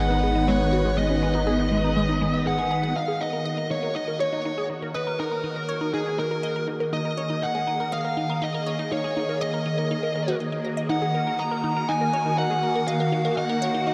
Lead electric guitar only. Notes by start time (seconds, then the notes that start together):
0.00 F#5
0.48 C#5
0.98 D#5
2.47 F#5
2.96 F5
3.21 D#5
3.71 C#5
3.96 D#5
4.20 C#5
4.95 B4
5.20 A#4
5.94 G#4
6.19 A#4
6.93 D#5
7.43 F#5
7.93 F5
8.43 D#5
8.92 C#5
9.42 D#5
10.90 F#5
11.39 A#5
11.89 G#5
12.38 F#5
12.87 F5
13.37 F#5